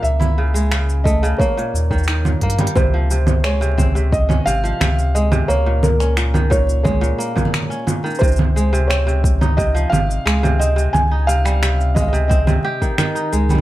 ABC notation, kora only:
X:1
M:4/4
L:1/16
Q:1/4=88
K:Dblyd
V:1 name="Kora" clef=bass
z =E ^C, ^G, C,2 =A, C, B, B,, z _E, E, B,, B, =G, | C, F, C,2 A, C, C C,2 D C, F, C,2 A, C, | B, B,,2 D B,, E, B,,2 A, B,, B, B,,2 D B,, E, | C,2 A, C, C C,2 E C, F, C,2 A, C, C C, |
z E C, G, C,2 A, C, C C, G E, E, E A, G, |]